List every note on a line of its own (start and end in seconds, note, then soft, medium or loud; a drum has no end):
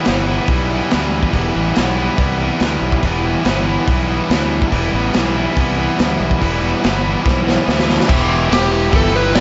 0.05 0.38 G1 medium
0.05 0.48 E3 medium
0.05 0.30 G3 medium
0.05 0.28 B3 medium
0.05 snare loud
0.05 open hi-hat soft
0.09 0.26 E4 medium
0.26 0.50 B3 medium
0.26 0.52 E4 medium
0.30 0.49 G3 medium
0.48 0.80 B1 medium
0.48 0.90 E3 medium
0.48 0.74 G3 loud
0.48 0.72 B3 medium
0.48 kick loud
0.48 open hi-hat soft
0.52 0.69 E4 medium
0.70 0.93 B3 medium
0.70 0.94 E4 medium
0.74 0.92 G3 medium
0.91 1.23 D2 medium
0.91 1.31 E3 medium
0.91 1.33 G3 medium
0.91 1.35 B3 medium
0.91 snare loud
0.91 open hi-hat medium
0.95 1.36 E4 medium
1.23 kick medium
1.32 1.49 E1 medium
1.32 1.74 E3 medium
1.32 1.57 G3 loud
1.32 1.55 B3 medium
1.32 kick medium
1.32 open hi-hat medium
1.36 1.52 E4 medium
1.53 1.71 A1 medium
1.53 1.78 B3 medium
1.53 1.78 E4 medium
1.57 1.76 G3 medium
1.75 2.08 B1 medium
1.75 2.16 E3 medium
1.75 1.99 G3 medium
1.75 1.97 B3 medium
1.75 snare loud
1.75 open hi-hat medium
1.79 1.94 E4 medium
1.95 2.19 B3 medium
1.95 2.20 E4 medium
1.99 2.17 G3 medium
2.16 2.49 C2 medium
2.16 2.59 E3 medium
2.16 2.43 G3 loud
2.16 2.41 B3 medium
2.16 2.38 E4 medium
2.16 kick loud
2.16 open hi-hat soft
2.39 2.62 B3 medium
2.39 2.63 E4 medium
2.43 2.62 G3 medium
2.60 2.76 D2 medium
2.60 3.02 E3 medium
2.60 3.04 G3 medium
2.60 3.05 B3 medium
2.60 snare medium
2.60 open hi-hat soft
2.64 3.06 E4 medium
2.81 2.97 B1 medium
2.92 kick medium
3.02 3.35 E1 medium
3.02 3.44 E3 loud
3.02 3.28 G3 medium
3.02 3.27 B3 medium
3.02 kick medium
3.02 open hi-hat soft
3.07 3.24 E4 medium
3.25 3.46 G3 medium
3.25 3.47 B3 medium
3.25 3.48 E4 medium
3.44 3.76 G1 medium
3.44 3.85 E3 medium
3.44 3.69 G3 medium
3.44 3.67 B3 medium
3.44 snare loud
3.44 open hi-hat soft
3.48 3.65 E4 medium
3.65 3.88 G3 medium
3.65 3.88 B3 medium
3.65 3.89 E4 medium
3.86 4.19 B1 medium
3.86 4.29 E3 medium
3.86 4.11 G3 medium
3.86 4.09 B3 loud
3.86 kick loud
3.86 open hi-hat soft
3.90 4.07 E4 medium
4.07 4.32 B3 medium
4.07 4.33 E4 medium
4.12 4.30 G3 medium
4.29 4.61 D2 medium
4.29 4.70 E3 medium
4.29 4.72 G3 medium
4.29 4.74 B3 medium
4.29 4.75 E4 medium
4.29 snare loud
4.29 open hi-hat soft
4.62 kick medium
4.71 4.88 E1 medium
4.71 5.14 E3 medium
4.71 4.97 G3 loud
4.71 4.94 B3 medium
4.71 kick medium
4.71 open hi-hat soft
4.75 4.92 E4 medium
4.92 5.09 A1 medium
4.92 5.17 B3 medium
4.92 5.18 E4 medium
4.97 5.16 G3 medium
5.14 5.46 B1 medium
5.14 5.56 E3 medium
5.14 5.40 G3 medium
5.14 snare loud
5.14 open hi-hat soft
5.18 5.37 B3 medium
5.18 5.35 E4 medium
5.35 5.59 B3 medium
5.35 5.60 E4 medium
5.40 5.57 G3 medium
5.56 5.88 C2 medium
5.56 5.97 E3 medium
5.56 5.81 G3 medium
5.56 5.78 B3 medium
5.56 kick loud
5.56 open hi-hat soft
5.61 5.77 E4 medium
5.77 6.00 B3 medium
5.77 6.01 E4 medium
5.82 5.99 G3 medium
5.97 6.15 D2 medium
5.97 6.39 E3 medium
5.97 6.40 G3 medium
5.97 6.41 B3 medium
5.97 snare loud
5.97 open hi-hat soft
6.02 6.42 E4 medium
6.20 6.36 B1 medium
6.31 kick medium
6.40 6.72 E1 medium
6.40 6.80 E3 medium
6.40 6.64 G3 medium
6.40 6.61 B3 medium
6.40 6.59 E4 medium
6.40 kick medium
6.40 open hi-hat soft
6.60 6.83 B3 medium
6.60 6.84 E4 medium
6.65 6.81 G3 medium
6.81 7.15 G1 medium
6.81 7.20 E3 medium
6.81 7.04 G3 medium
6.81 7.03 B3 medium
6.81 open hi-hat soft
6.85 7.00 E4 medium
6.85 snare loud
7.02 7.22 G3 medium
7.02 7.23 B3 medium
7.02 7.25 E4 medium
7.21 7.62 E3 medium
7.21 7.46 G3 loud
7.21 7.43 B3 medium
7.26 7.57 B1 medium
7.26 7.41 E4 medium
7.26 kick loud
7.26 snare medium
7.43 7.65 B3 medium
7.43 7.66 E4 medium
7.47 7.64 G3 medium
7.47 snare medium
7.64 7.98 D2 medium
7.64 8.06 E3 medium
7.64 8.07 G3 medium
7.64 8.07 B3 medium
7.64 8.08 E4 medium
7.69 snare medium
7.79 snare medium
7.90 snare medium
8.00 snare medium
8.07 8.48 E1 loud
8.07 8.28 E3 medium
8.07 8.29 B3 loud
8.07 8.29 E4 medium
8.07 8.30 G4 medium
8.07 kick loud
8.07 crash loud
8.28 8.48 E3 medium
8.28 8.49 B3 medium
8.28 8.50 E4 loud
8.28 8.51 G4 medium
8.48 8.90 E1 loud
8.48 8.69 E3 medium
8.48 8.70 B3 loud
8.48 8.71 E4 loud
8.48 8.71 G4 medium
8.48 open hi-hat medium
8.53 8.93 G4 loud
8.53 snare loud
8.70 8.89 E3 medium
8.70 8.90 B3 medium
8.70 8.91 E4 loud
8.70 8.92 G4 loud
8.90 9.32 G1 medium
8.90 9.11 E3 loud
8.90 9.12 B3 loud
8.90 9.13 E4 loud
8.90 9.13 G4 loud
8.90 kick loud
8.90 open hi-hat medium
8.96 9.15 A4 loud
9.13 9.31 E3 medium
9.13 9.32 B3 medium
9.13 9.33 E4 medium
9.13 9.33 G4 medium
9.13 9.35 B4 medium
9.32 9.40 B1 medium
9.32 9.40 E3 medium
9.32 9.40 B3 loud
9.32 9.40 E4 loud
9.32 9.40 G4 loud
9.32 9.40 D5 medium
9.32 snare loud
9.32 open hi-hat medium